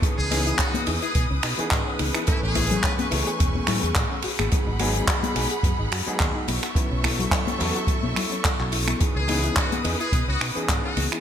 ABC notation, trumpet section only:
X:1
M:4/4
L:1/16
Q:"Swing 16ths" 1/4=107
K:C#m
V:1 name="Trumpet section"
z G3 F2 z G2 z6 z | E G3 B B z8 z2 | z16 | z16 |
z G3 F2 z G2 F2 z2 F2 z |]